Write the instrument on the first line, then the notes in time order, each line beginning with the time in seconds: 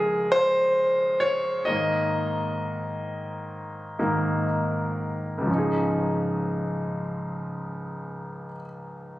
grand piano
Already playing: C#3 F3 G#3 G#4 A#4 C#5
0.32 C5
1.20 C#5
1.65 G#2 D#3 A#3 D#5
3.99 G#2 D#3 A#3
5.38 C#2 G#2
5.46 F3 C#4
5.54 D#4 G#4